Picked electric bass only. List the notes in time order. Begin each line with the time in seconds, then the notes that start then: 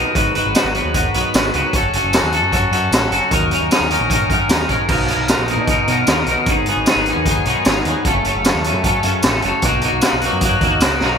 0.15 G#1
0.45 G#1
0.64 G#1
0.85 D#2
1.15 B1
1.34 G#1
1.54 C#2
1.73 F#1
2.03 F#1
2.23 D#2
2.42 F#2
2.71 F#2
2.91 A1
3.11 F#1
3.31 D#2
3.60 D#2
3.80 D#2
4.00 A#1
4.30 F#2
4.49 D#2
4.69 A#1
4.89 B1
5.18 B1
5.38 A#1
5.57 B2
5.87 B2
6.07 D#2
6.27 B1
6.46 G#1
6.76 G#1
6.96 G#1
7.16 D#2
7.46 B1
7.66 G#1
7.85 D#2
8.05 F#1
8.35 F#1
8.55 D#2
8.74 F#2
9.04 F#2
9.24 A1
9.44 F#1
9.63 B1
9.92 B1
10.13 B1
10.33 F#2
10.61 D#2
10.82 C#2
11.02 B1